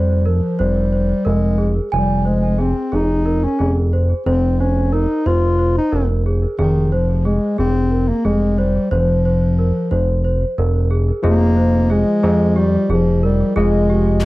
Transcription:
Already playing: analog synth bass F1, bass clarinet G3, celesta C5
0.25 bass clarinet F3, celesta A#4
0.59 analog synth bass F1, bass clarinet G3, celesta C5
0.92 celesta C5
1.25 analog synth bass F1, bass clarinet G#3, celesta A#4
1.58 celesta G#4
1.92 analog synth bass F1, bass clarinet G3, celesta G#5
2.25 bass clarinet G#3, celesta C5
2.58 bass clarinet C4, celesta G#4
2.92 analog synth bass F1, bass clarinet D#4, celesta G#4
3.25 celesta A#4
3.44 bass clarinet C#4
3.59 analog synth bass F1, celesta G#4
3.93 celesta C5
4.26 analog synth bass F1, bass clarinet C4, celesta C5
4.60 bass clarinet C#4, celesta C5
4.93 bass clarinet D#4, celesta A#4
5.26 analog synth bass F1, bass clarinet F4, celesta C5
5.59 celesta C5
5.78 bass clarinet D#4
5.92 analog synth bass F1, celesta A#4
6.26 celesta G#4
6.59 analog synth bass F1, bass clarinet D#3, celesta G#4
6.92 bass clarinet F3, celesta C5
7.25 bass clarinet G#3, celesta G#4
7.58 analog synth bass F1, bass clarinet C4, celesta G#4
7.91 celesta A#4
8.09 bass clarinet A#3
8.25 analog synth bass F1, bass clarinet G#3, celesta G#4
8.58 bass clarinet G3, celesta C5
8.91 analog synth bass F1, bass clarinet F3, celesta C5
9.25 celesta C5
9.59 celesta A#4
9.91 analog synth bass F1, celesta C5
10.24 celesta C5
10.58 analog synth bass F1, celesta A#4
10.91 celesta G#4
11.23 analog synth bass F1, tine electric piano F3 F4 C5 D#5, bass clarinet A#3, celesta G#4
11.57 celesta C5
11.90 bass clarinet G#3, celesta G#4
12.23 analog synth bass F2, celesta G#4
12.56 bass clarinet G3, celesta G4
12.90 analog synth bass F1, bass clarinet F3, celesta G#4
13.23 bass clarinet G3, celesta A#4
13.56 analog synth bass F1, tine electric piano F3 F4 G#4 D#5, bass clarinet G#3, celesta G#4
13.90 celesta G4

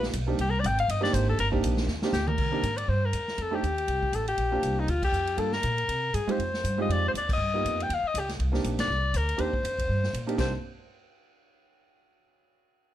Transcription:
Already playing: upright bass A#1, grand piano A#3 B3 D#4 F4 G4
0.03 snare
0.13 upright bass B1, kick, hi-hat pedal, ride
0.26 grand piano A#3 C4 D4 D#4 G4
0.38 upright bass C2, alto saxophone G4, kick, ride
0.50 alto saxophone A#4
0.60 upright bass G#1, alto saxophone D5, kick
0.64 alto saxophone G5, hi-hat pedal, ride
0.79 alto saxophone F5, ride
0.88 upright bass G1, alto saxophone D#5, kick, ride
1.01 grand piano A#3 C4 D4 D#4 G4, alto saxophone D5, snare
1.13 upright bass G#1, alto saxophone C5, kick, hi-hat pedal, ride
1.30 alto saxophone A4
1.38 upright bass G1, alto saxophone A#4, kick, ride
1.52 grand piano A#3 C4 D4 D#4 G4, kick
1.63 upright bass A#1, kick, hi-hat pedal, ride
1.77 snare
1.87 upright bass D#2, snare
2.02 grand piano A#3 C4 D4 D#4 G4, snare
2.13 upright bass D2, alto saxophone G4, snare, hi-hat pedal
2.27 alto saxophone A#4, mid tom
2.38 upright bass C2, kick, crash
2.51 grand piano A#3 C4 D4 D#4 G4
2.63 upright bass G#2, kick, hi-hat pedal, ride
2.77 alto saxophone D5, ride
2.88 upright bass G2, alto saxophone C5, kick
3.05 alto saxophone A#4
3.13 upright bass D#2, kick, hi-hat pedal, ride
3.28 snare
3.38 upright bass F2, alto saxophone A4, kick, ride
3.51 grand piano A3 C4 D4 D#4 G4
3.55 alto saxophone G4
3.63 upright bass D#2, kick, hi-hat pedal, ride
3.78 ride
3.88 upright bass C2, kick, ride
4.03 kick
4.12 upright bass A1, alto saxophone A4, kick, hi-hat pedal, ride
4.28 alto saxophone G4, ride
4.38 upright bass A#1, kick, ride
4.52 grand piano A#3 C4 D4 F4 G4
4.63 upright bass C2, kick, hi-hat pedal, ride
4.80 alto saxophone D#4
4.88 upright bass D2, alto saxophone F4, kick, ride
5.03 alto saxophone G4, kick, crash
5.12 upright bass F2, hi-hat pedal
5.27 ride
5.37 upright bass G2, grand piano G3 A#3 D4 F4 A4, alto saxophone A4, kick, ride
5.52 alto saxophone A#4, snare
5.63 upright bass A#2, kick, hi-hat pedal, ride
5.78 ride
5.88 upright bass C3, kick, ride
6.14 upright bass G#2, alto saxophone G#4, kick, hi-hat pedal, ride
6.27 grand piano G#3 C4 D#4 F4 G4, muted upright bass stroke, ride
6.31 alto saxophone C5
6.39 upright bass F2, kick, ride
6.54 snare
6.64 upright bass G2, kick, hi-hat pedal, ride
6.78 grand piano G#3 C4 D#4 F4 G4, alto saxophone D#5
6.89 upright bass F2, alto saxophone D5, kick, ride
7.08 alto saxophone C5
7.14 upright bass D#2, alto saxophone D5, kick, hi-hat pedal, ride
7.29 kick, crash
7.33 alto saxophone D#5
7.38 upright bass G2
7.54 grand piano A#3 B3 D#4 F4 G4
7.65 upright bass F2, kick, hi-hat pedal, ride
7.80 alto saxophone G5, ride
7.89 upright bass D#2, kick, ride
7.94 alto saxophone F5
8.03 muted upright bass stroke
8.08 alto saxophone D#5
8.14 upright bass C#2, kick, hi-hat pedal, ride
8.19 alto saxophone G4
8.29 snare, ride
8.39 upright bass C2, kick, ride
8.52 grand piano A#3 C4 D4 D#4 G4, snare
8.64 upright bass A#1, kick, hi-hat pedal, ride
8.78 alto saxophone D5, snare, ride
8.88 upright bass C2
9.14 upright bass D2, alto saxophone A#4, kick, hi-hat pedal, ride
9.29 ride
9.37 upright bass D#2, grand piano A#3 C4 D4 D#4 G4, alto saxophone C5, kick, ride
9.53 kick
9.63 upright bass F2, kick, hi-hat pedal, ride
9.78 kick, ride
9.89 upright bass G2, kick
10.04 snare
10.13 upright bass A#2, kick, hi-hat pedal, ride
10.27 grand piano A#3 C4 D4 D#4 G4, ride
10.37 upright bass C2, grand piano A#3 C4 D4 D#4 G4, alto saxophone C5, kick, snare, crash

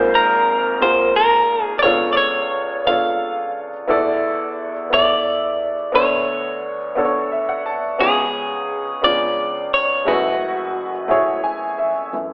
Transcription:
Already playing: upright piano G#1 G#2 A#3 F4 F#4 G#4 C5
0.15 clean electric guitar A#4
0.80 upright piano A#3 F4 F#4 G#4 A#4, clean electric guitar C5
1.16 clean electric guitar A#4
1.63 clean electric guitar G#4
1.79 upright piano B3, clean electric guitar C#5 D5
1.83 upright piano C#2 C#3 D4 F4 A4 C#5
2.13 clean electric guitar D5
2.17 clean electric guitar C#5
2.85 upright piano B3 D4 F4 A4 C#5, clean electric guitar F5
3.87 upright piano E2 E3 B3 E4 F#4 A4 D5
4.90 upright piano B3 E4 F#4 A4 E5, clean electric guitar D5
5.92 upright piano D2 D3 B3 D4 F#4 A4 C#5, clean electric guitar C#5
6.95 upright piano B3 D4 F#4 A4 C#5
7.05 upright piano C#5
7.32 upright piano E5
7.49 upright piano F#5
7.66 upright piano A5
7.98 upright piano C#2 C#3 B3 C#4 F#4 G#4 C#5, clean electric guitar G#4
9.02 upright piano C#2 C#3 B3 C#4 D4 F4 G#4, clean electric guitar D5
9.74 clean electric guitar C#5
10.05 upright piano F#1 F#2 G#3 E4 F#4 G#4 B4, clean electric guitar F#4
10.11 upright piano A3
11.08 upright piano A3 E4 F#4 G#4 C#5
11.44 upright piano G#5
11.78 upright piano E5
12.13 upright piano F#2 E3 A3

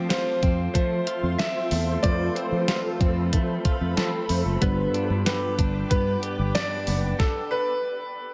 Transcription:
Already playing: clean electric guitar F3 C4, synth keys A3 C4 F4 C5, ambient pad F4 A4 C5 C6
0.09 clean electric guitar F4, grand piano C5, snare, closed hi-hat
0.43 fretless electric bass F2, clean electric guitar C4, kick, closed hi-hat
0.74 fretless electric bass F3, clean electric guitar A3, grand piano C5, kick, closed hi-hat
1.07 clean electric guitar F4, closed hi-hat
1.23 fretless electric bass F2
1.38 clean electric guitar C4, grand piano E5, snare, closed hi-hat
1.71 fretless electric bass E2, clean electric guitar A3, open hi-hat
2.03 fretless electric bass F2, clean electric guitar F3, synth keys A3 C4 F4 B4, grand piano D5, ambient pad B5, kick, closed hi-hat
2.12 synth keys C5
2.35 clean electric guitar C4, grand piano C5, closed hi-hat
2.52 fretless electric bass F3
2.68 clean electric guitar F4, snare, closed hi-hat
3.01 fretless electric bass F2, clean electric guitar C4, kick, closed hi-hat
3.33 fretless electric bass F3, clean electric guitar A3, kick, closed hi-hat
3.65 clean electric guitar F4, kick, closed hi-hat
3.81 fretless electric bass F2
3.97 fretless electric bass F3, clean electric guitar C4, grand piano A4, snare, closed hi-hat
4.29 fretless electric bass F2, clean electric guitar A3, open hi-hat
4.46 fretless electric bass F#1
4.61 fretless electric bass G1, synth keys G2 G3 B3 D4 B4, clean electric guitar B3, grand piano B4, ambient pad B4 D5 G5 D6, kick, closed hi-hat
4.94 clean electric guitar D4, closed hi-hat
5.10 fretless electric bass G2
5.26 clean electric guitar G4, grand piano B4, snare, closed hi-hat
5.59 fretless electric bass G1, clean electric guitar D4, kick, closed hi-hat
5.90 fretless electric bass G2, clean electric guitar B3, grand piano B4, kick, closed hi-hat
6.23 clean electric guitar G4, closed hi-hat
6.39 fretless electric bass G1
6.55 clean electric guitar D4, grand piano D5, snare, closed hi-hat
6.87 fretless electric bass F#1, clean electric guitar B3, open hi-hat
7.19 grand piano A4, kick, snare
7.51 grand piano B4

